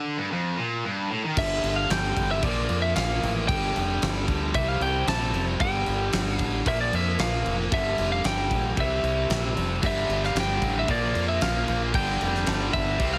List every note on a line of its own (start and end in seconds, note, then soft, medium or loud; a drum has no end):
0.00 0.18 D3 loud
0.19 0.30 G2 loud
0.32 0.57 F2 loud
0.58 0.84 A#2 loud
0.84 1.10 G2 loud
1.11 1.23 A2 loud
1.25 1.37 D#3 medium
1.37 1.60 G1 loud
1.37 2.42 G2 medium
1.37 2.42 D3 loud
1.37 2.43 G3 loud
1.37 1.79 E5 loud
1.37 kick loud
1.37 crash loud
1.37 crash medium
1.63 1.86 G1 loud
1.63 crash medium
1.76 1.90 F5 medium
1.90 2.13 G1 loud
1.90 2.30 G5 loud
1.90 snare loud
1.90 crash medium
2.16 2.39 G1 medium
2.16 kick medium
2.16 crash medium
2.31 2.43 E5 medium
2.43 2.66 A#1 medium
2.43 3.48 A#2 medium
2.43 3.48 F3 loud
2.43 3.49 A#3 loud
2.43 2.82 D5 medium
2.43 kick loud
2.43 crash medium
2.69 2.93 F2 medium
2.69 crash medium
2.82 2.95 E5 medium
2.96 3.19 A#1 loud
2.96 3.33 F5 medium
2.96 snare loud
2.96 crash medium
3.23 3.46 A1 medium
3.23 crash medium
3.47 3.72 G1 loud
3.47 4.52 G2 loud
3.47 4.53 D3 loud
3.47 4.54 G3 loud
3.47 4.58 G5 loud
3.47 kick loud
3.47 crash medium
3.76 3.99 F1 loud
3.76 crash medium
4.02 4.25 G1 medium
4.02 snare loud
4.02 crash medium
4.28 4.51 D2 medium
4.28 kick medium
4.28 crash medium
4.54 4.78 C2 medium
4.54 5.59 C3 medium
4.54 5.59 G3 loud
4.54 5.59 C4 loud
4.54 4.68 E5 loud
4.54 kick loud
4.54 crash medium
4.68 4.81 F5 medium
4.80 5.04 C2 medium
4.80 5.08 G5 loud
4.80 crash medium
5.07 5.30 A#1 loud
5.07 5.45 A5 loud
5.07 snare loud
5.07 crash medium
5.33 5.56 F1 medium
5.33 crash medium
5.60 5.83 G1 loud
5.60 6.64 G2 loud
5.60 6.65 D3 loud
5.60 6.66 G3 loud
5.60 6.37 G5 loud
5.60 kick loud
5.60 crash medium
5.86 6.10 G1 medium
5.86 crash medium
6.13 6.36 G1 loud
6.13 snare loud
6.13 crash medium
6.37 6.62 A1 medium
6.37 6.70 F5 loud
6.37 kick medium
6.37 crash medium
6.66 6.89 A#1 medium
6.66 7.70 A#2 medium
6.66 7.71 F3 loud
6.66 7.71 A#3 medium
6.66 6.80 E5 loud
6.66 kick loud
6.66 crash medium
6.81 6.95 D5 medium
6.93 7.16 F2 medium
6.93 7.20 E5 medium
6.93 crash medium
7.19 7.42 A#1 loud
7.19 7.57 F5 medium
7.19 snare loud
7.19 crash medium
7.45 7.68 F1 medium
7.45 crash medium
7.72 7.95 G1 loud
7.72 8.76 G2 loud
7.72 8.76 D3 loud
7.72 8.76 G3 loud
7.72 8.12 E5 medium
7.72 kick loud
7.72 crash medium
7.98 8.21 F1 loud
7.98 crash medium
8.12 8.25 F5 medium
8.24 8.47 G1 medium
8.24 8.80 G5 loud
8.24 snare loud
8.24 crash medium
8.51 8.74 A#1 loud
8.51 kick medium
8.51 crash medium
8.76 9.00 C2 medium
8.76 9.81 C3 medium
8.76 9.82 G3 loud
8.76 9.82 C4 medium
8.76 kick loud
8.76 crash medium
8.80 9.54 E5 medium
9.03 9.26 C2 medium
9.03 crash medium
9.29 9.53 A#1 loud
9.29 snare loud
9.29 crash medium
9.56 9.79 F1 medium
9.56 crash medium
9.82 10.06 G1 loud
9.82 10.87 G2 loud
9.82 10.87 D3 loud
9.82 10.88 G3 loud
9.82 kick loud
9.82 crash medium
9.86 10.22 E5 medium
10.09 10.32 G1 loud
10.09 crash medium
10.24 10.38 F5 medium
10.24 snare soft
10.35 10.58 G1 loud
10.35 snare loud
10.35 crash medium
10.40 10.79 G5 loud
10.62 10.85 A1 medium
10.62 kick medium
10.62 crash medium
10.79 10.90 E5 medium
10.87 11.11 A#1 loud
10.87 11.92 A#2 loud
10.87 11.93 F3 medium
10.87 11.93 A#3 loud
10.87 11.27 D5 medium
10.87 kick loud
10.87 crash medium
11.15 11.38 F2 medium
11.15 crash medium
11.28 11.42 E5 medium
11.41 11.64 A#1 medium
11.41 11.81 F5 medium
11.41 snare loud
11.41 crash medium
11.68 11.91 A#1 medium
11.68 crash medium
11.93 12.17 G1 loud
11.93 12.98 G2 loud
11.93 12.98 D3 loud
11.93 12.99 G3 loud
11.93 12.70 G5 loud
11.93 kick loud
11.93 crash medium
12.21 12.44 F1 medium
12.21 crash medium
12.35 snare soft
12.46 12.70 G1 loud
12.46 snare loud
12.46 crash medium
12.73 12.96 G1 medium
12.73 13.13 E5 loud
12.73 kick medium
12.73 crash medium
12.99 13.18 C2 loud
12.99 13.18 C3 medium
12.99 13.18 G3 medium
12.99 13.18 C4 loud
12.99 kick loud
12.99 crash medium
13.13 13.18 F5 medium